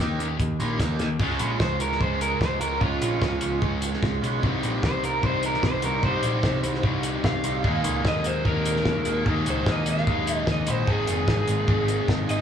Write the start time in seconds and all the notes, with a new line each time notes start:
Already playing: G5
0.00 D#2 D#3 A#3 D#4 G4
0.19 D#2 D#3 A#3 C#4, closed hi-hat
0.39 D#2 D#3 A#3, kick, closed hi-hat
0.59 A#1 D#3 A#3 C#4 D#4 G4, closed hi-hat
0.80 D#2 D#3 A#3 D#4 G4, kick, snare, closed hi-hat
0.99 D#2 D#3 A#3, snare, closed hi-hat
1.19 C#2 C#3 F3 G#3 C#4 F4, kick, crash
1.39 A#1, closed hi-hat
1.60 C#2 C5, kick, snare
1.80 C#2 A#4, closed hi-hat
1.92 snare
2.00 C#2 C#3 F3 G#3 C#4 C5, kick
2.21 A#4, closed hi-hat
2.41 C#2 C5, kick, snare
2.61 C#2 G#3 C#4 F4 A#4, closed hi-hat
2.81 C#2 C#3 F3 G#3 C#4 F4, kick
3.01 A#1, closed hi-hat
3.22 C#2, kick, snare
3.41 C#2, closed hi-hat
3.61 C#2 C#3 F3 G#3 C#4, kick
3.82 closed hi-hat
3.93 snare
4.03 C#2, kick, snare
4.21 B1 G#3 C#4 F4, closed hi-hat
4.41 C2 C3 G3 C4, kick
4.45 D#4 G4
4.63 A#1, closed hi-hat
4.83 C2 C5, kick, snare
5.02 C2 A#4, closed hi-hat
5.22 C2 C3 G3 C4 D#4 C5, kick
5.43 A#4, closed hi-hat
5.54 snare
5.63 C2 C5, kick, snare
5.82 C2 G3 C4 D#4 G4 A#4, closed hi-hat
6.02 C2 C3 G3 C4 D#4 C5, kick
6.06 G4
6.23 A#1, closed hi-hat
6.43 C2, kick, snare
6.63 C2, closed hi-hat
6.74 snare
6.83 C2 C3 G3 C4 D#4, kick
7.03 closed hi-hat
7.24 C2 F5, kick, snare
7.44 C2 G3 C4 D#4 G4, closed hi-hat
7.63 D#2 A#2 D#3 G#3 A#3 D#4 G#4, kick
7.67 D#4
7.84 C#2, closed hi-hat
8.05 D#2 D#5, kick, snare
8.24 D#2 C5, closed hi-hat
8.45 D#2 D#3 G#3 A#3 D#4 A#4, kick
8.65 closed hi-hat
8.76 snare
8.85 D#2, kick, snare
9.05 D#2 A#3 D#4 G#4, closed hi-hat
9.26 D#2 D#3 G#3 A#3 D#4 G#4, kick
9.30 D#4
9.46 C#2, closed hi-hat
9.50 C5
9.66 D#2, kick, snare
9.71 D#5
9.86 D#2, closed hi-hat
9.90 F5
9.97 snare
10.07 D#2 D#3 G#3 A#3 D#4, kick
10.27 closed hi-hat
10.47 D#2, kick, snare
10.52 D#5
10.67 A#1 A#3 D#4 G#4 C5, closed hi-hat
10.87 G#1 G#2 C3 D#3 G#3 A#3 C4 D#4 G#4, kick
10.91 D#4 G#4
11.07 F1, closed hi-hat
11.27 G#1, kick, snare
11.48 G#1, closed hi-hat
11.67 G#1 G#2 D#3 G#3 C4 D#4, kick
11.88 closed hi-hat
12.08 G#1, kick, snare
12.27 G#1 C4 D#4 G#4 D#5, closed hi-hat